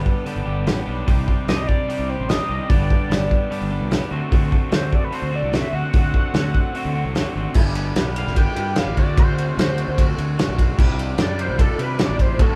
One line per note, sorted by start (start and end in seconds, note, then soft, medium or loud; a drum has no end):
0.00 0.46 G2 medium
0.00 0.47 D3 medium
0.00 0.26 G3 medium
0.00 0.25 B3 medium
0.00 0.26 D4 medium
0.00 0.27 G4 medium
0.00 0.23 B4 medium
0.06 kick medium
0.25 0.66 G2 medium
0.25 0.66 D3 medium
0.25 0.48 G3 medium
0.25 0.46 B3 medium
0.25 0.46 D4 medium
0.25 0.45 G4 medium
0.25 open hi-hat medium
0.36 0.45 G1 medium
0.45 0.64 G1 medium
0.45 0.66 G3 medium
0.45 0.66 B3 medium
0.45 0.68 D4 medium
0.45 0.69 G4 medium
0.66 0.85 A1 medium
0.66 0.89 G3 medium
0.66 0.87 B3 medium
0.66 0.88 D4 medium
0.66 0.86 G4 medium
0.66 snare loud
0.66 open hi-hat medium
0.87 1.06 B1 medium
0.87 1.08 G3 medium
0.87 1.07 B3 medium
0.87 1.09 D4 medium
0.87 1.10 G4 medium
1.07 1.26 C2 medium
1.07 1.48 C3 medium
1.07 1.47 D#3 medium
1.07 1.30 G3 medium
1.07 1.48 C4 medium
1.07 1.28 D4 medium
1.07 1.27 G4 loud
1.07 kick loud
1.07 open hi-hat medium
1.28 1.49 G3 medium
1.28 1.50 D4 medium
1.28 1.50 G4 medium
1.28 kick medium
1.47 1.66 C2 medium
1.47 2.09 C3 medium
1.47 1.88 D#3 medium
1.47 1.89 G3 medium
1.47 1.87 C4 medium
1.47 1.91 D4 medium
1.47 1.90 G4 medium
1.47 1.69 D#5 medium
1.47 snare loud
1.47 open hi-hat medium
1.67 2.11 D5 loud
1.67 kick medium
1.88 2.29 C3 medium
1.88 2.27 D#3 medium
1.88 2.10 G3 medium
1.88 2.09 C4 medium
1.88 2.09 D4 medium
1.88 2.07 G4 medium
1.88 open hi-hat medium
1.99 2.17 C2 medium
2.08 2.29 G3 medium
2.08 2.29 C4 medium
2.08 2.30 D4 medium
2.08 2.30 G4 medium
2.08 2.30 C5 medium
2.19 2.37 A1 medium
2.28 2.68 D#3 medium
2.28 2.50 G3 medium
2.28 2.50 C4 medium
2.28 2.49 D4 medium
2.28 2.47 G4 medium
2.28 2.70 D#5 loud
2.28 snare loud
2.28 open hi-hat soft
2.48 2.58 C2 medium
2.48 2.69 G3 medium
2.48 2.69 C4 medium
2.48 2.71 D4 medium
2.48 2.69 D#4 medium
2.48 2.68 G4 medium
2.69 2.88 G1 medium
2.69 3.10 G2 medium
2.69 3.10 D3 medium
2.69 2.90 G3 loud
2.69 2.89 B3 loud
2.69 2.88 D4 loud
2.69 2.87 G4 medium
2.69 3.51 D5 loud
2.69 kick loud
2.69 open hi-hat medium
2.88 3.08 G3 soft
2.88 3.09 B3 medium
2.88 3.12 D4 medium
2.88 3.11 G4 medium
2.88 kick medium
3.09 3.28 G1 loud
3.09 3.70 G2 medium
3.09 3.71 D3 medium
3.09 3.50 G3 medium
3.09 3.50 B3 medium
3.09 3.51 D4 medium
3.09 3.51 G4 medium
3.09 snare loud
3.09 open hi-hat medium
3.31 kick medium
3.49 3.91 G2 medium
3.49 3.91 D3 medium
3.49 3.71 G3 loud
3.49 3.71 B3 medium
3.49 3.70 D4 medium
3.49 3.69 G4 medium
3.49 open hi-hat medium
3.61 3.79 G1 medium
3.70 3.89 G3 medium
3.70 3.90 B3 medium
3.70 3.92 D4 medium
3.70 3.92 G4 medium
3.81 3.99 C2 medium
3.90 4.10 G3 medium
3.90 4.11 B3 medium
3.90 4.11 D4 medium
3.90 4.11 G4 medium
3.90 snare loud
3.90 open hi-hat medium
4.11 4.20 D2 medium
4.11 4.31 D3 medium
4.11 4.33 A3 medium
4.11 4.33 C4 medium
4.11 4.34 F#4 medium
4.32 4.50 D2 medium
4.32 4.70 D3 medium
4.32 4.54 A3 medium
4.32 4.52 C4 medium
4.32 4.51 F#4 medium
4.32 kick loud
4.32 open hi-hat medium
4.51 4.72 A3 medium
4.51 4.72 C4 medium
4.51 4.74 F#4 medium
4.51 kick medium
4.71 4.90 D2 loud
4.71 5.10 D3 medium
4.71 5.11 A3 medium
4.71 5.12 C4 medium
4.71 5.12 F#4 medium
4.71 4.96 C5 medium
4.71 snare loud
4.71 open hi-hat medium
4.92 5.06 D5 medium
4.92 kick medium
5.04 5.14 B4 medium
5.11 5.51 D3 medium
5.11 5.33 A3 medium
5.11 5.32 C4 medium
5.11 5.30 F#4 medium
5.11 5.33 C5 medium
5.11 open hi-hat medium
5.22 5.41 D2 medium
5.31 5.53 A3 medium
5.31 5.54 C4 medium
5.31 5.54 F#4 medium
5.35 5.57 D5 medium
5.43 5.61 C2 medium
5.53 5.93 D3 medium
5.53 5.74 A3 medium
5.53 5.74 C4 medium
5.53 5.72 F#4 medium
5.53 5.76 E5 loud
5.53 snare loud
5.53 open hi-hat medium
5.73 5.82 D2 medium
5.73 5.94 A3 medium
5.73 5.95 C4 medium
5.73 5.96 F#4 medium
5.73 7.36 F#5 loud
5.93 6.12 D2 medium
5.93 6.33 D3 medium
5.93 6.16 A3 medium
5.93 6.15 C4 medium
5.93 6.14 F#4 loud
5.93 kick loud
5.93 open hi-hat medium
6.14 6.34 A3 medium
6.14 6.35 C4 medium
6.14 6.36 F#4 medium
6.14 kick medium
6.34 6.52 D2 loud
6.34 6.73 D3 medium
6.34 6.74 A3 medium
6.34 6.75 C4 medium
6.34 6.76 F#4 medium
6.34 snare loud
6.34 open hi-hat soft
6.54 kick medium
6.75 7.15 D3 medium
6.75 6.97 A3 medium
6.75 6.96 C4 loud
6.75 6.94 F#4 loud
6.75 open hi-hat medium
6.85 7.03 D2 medium
6.95 7.15 A3 medium
6.95 7.17 C4 medium
6.95 7.17 F#4 medium
7.04 7.23 C2 medium
7.15 7.55 D3 medium
7.15 7.37 A3 medium
7.15 7.35 C4 medium
7.15 7.34 F#4 medium
7.15 snare loud
7.15 open hi-hat soft
7.35 7.45 G#1 medium
7.35 7.56 A3 soft
7.35 7.55 C4 medium
7.35 7.55 F#4 medium
7.54 7.91 G1 loud
7.54 7.96 G2 medium
7.54 7.97 D3 medium
7.54 7.77 E3 medium
7.54 7.76 G3 loud
7.54 7.75 B3 loud
7.54 7.73 G4 loud
7.54 kick loud
7.54 crash loud
7.75 7.95 E3 medium
7.75 7.96 G3 medium
7.75 7.97 B3 medium
7.75 7.97 G4 medium
7.75 ride medium
7.95 8.27 B1 loud
7.95 8.17 E3 medium
7.95 8.16 G3 medium
7.95 8.15 B3 medium
7.95 8.15 G4 medium
7.95 snare loud
7.95 ride loud
8.16 8.58 G2 medium
8.16 8.58 D3 medium
8.16 8.34 E3 medium
8.16 8.36 G3 medium
8.16 8.36 B3 medium
8.16 8.37 G4 medium
8.16 8.37 F5 medium
8.16 ride medium
8.26 8.44 G1 medium
8.26 snare soft
8.35 8.58 E3 medium
8.35 8.57 G3 medium
8.35 8.56 B3 medium
8.35 8.55 G4 medium
8.35 8.76 G5 medium
8.35 kick medium
8.35 ride loud
8.56 8.75 G2 medium
8.56 8.76 E3 medium
8.56 8.76 G3 medium
8.56 8.77 B3 medium
8.56 8.77 G4 medium
8.56 ride medium
8.76 8.95 G2 medium
8.76 8.96 D3 loud
8.76 8.96 E3 medium
8.76 8.96 G3 medium
8.76 8.97 B3 loud
8.76 8.96 G4 loud
8.76 8.97 F5 loud
8.76 snare loud
8.76 ride loud
8.87 8.96 A1 medium
8.96 9.51 D2 medium
8.96 9.15 D3 medium
8.96 9.16 A3 medium
8.96 9.18 C4 medium
8.96 9.18 F#4 medium
8.96 9.18 D5 loud
8.96 kick medium
8.96 ride medium
9.16 9.56 D3 loud
9.16 9.39 A3 medium
9.16 9.39 C4 loud
9.16 9.36 F#4 loud
9.16 9.58 C5 loud
9.16 kick loud
9.16 ride loud
9.37 9.57 A3 medium
9.37 9.59 C4 medium
9.37 9.59 F#4 medium
9.37 ride medium
9.57 9.84 D2 loud
9.57 9.79 D3 medium
9.57 9.78 A3 medium
9.57 9.78 C4 medium
9.57 9.76 F#4 medium
9.57 9.98 C5 medium
9.57 snare loud
9.57 ride loud
9.77 9.96 D3 medium
9.77 9.97 A3 medium
9.77 9.99 C4 medium
9.77 9.98 F#4 medium
9.77 ride medium
9.88 10.15 D2 medium
9.97 10.36 D3 medium
9.97 10.20 A3 medium
9.97 10.19 C4 medium
9.97 10.17 F#4 medium
9.97 kick loud
9.97 ride loud
10.18 10.36 D2 loud
10.18 10.37 A3 medium
10.18 10.39 C4 medium
10.18 10.39 F#4 medium
10.18 ride medium
10.38 10.77 D3 loud
10.38 10.59 A3 loud
10.38 10.59 C4 medium
10.38 10.57 F#4 loud
10.38 snare loud
10.38 ride loud
10.48 10.75 B1 medium
10.58 10.78 A3 medium
10.58 10.79 C4 medium
10.58 10.77 F#4 medium
10.58 kick medium
10.58 ride medium
10.77 11.14 C2 loud
10.77 11.18 C3 loud
10.77 11.16 D#3 loud
10.77 11.00 G3 loud
10.77 10.99 D4 loud
10.77 10.97 G4 loud
10.77 kick loud
10.77 crash loud
10.98 11.17 G3 medium
10.98 11.19 D4 medium
10.98 11.19 G4 medium
10.98 ride medium
11.17 11.50 F#2 loud
11.17 11.38 D#3 medium
11.17 11.38 G3 medium
11.17 11.38 D4 medium
11.17 11.36 G4 medium
11.17 snare loud
11.17 ride loud
11.22 11.40 D5 medium
11.38 11.80 C3 medium
11.38 11.57 D#3 medium
11.38 11.58 G3 medium
11.38 11.60 D4 medium
11.38 11.60 G4 medium
11.38 11.59 C5 medium
11.38 ride medium
11.48 11.66 C2 medium
11.59 11.98 D#3 medium
11.59 11.80 G3 medium
11.59 11.79 D4 medium
11.59 11.77 G4 medium
11.59 11.79 A4 loud
11.59 kick medium
11.59 ride loud
11.78 11.97 C3 medium
11.78 11.99 G3 medium
11.78 12.01 D4 medium
11.78 12.01 G4 medium
11.78 12.00 B4 medium
11.78 ride medium
11.99 12.38 C3 loud
11.99 12.38 D#3 loud
11.99 12.21 G3 loud
11.99 12.20 D4 loud
11.99 12.18 G4 loud
11.99 12.20 D5 medium
11.99 snare loud
11.99 ride loud
12.09 12.40 A1 medium
12.19 12.40 G3 medium
12.19 12.41 D4 medium
12.19 12.38 G4 medium
12.19 12.40 C5 medium
12.19 kick medium
12.19 ride medium
12.39 12.55 D2 loud
12.39 12.55 D3 medium
12.39 12.55 A3 medium
12.39 12.55 C4 medium
12.39 12.55 F#4 loud
12.39 12.55 A4 medium
12.39 kick loud
12.39 ride loud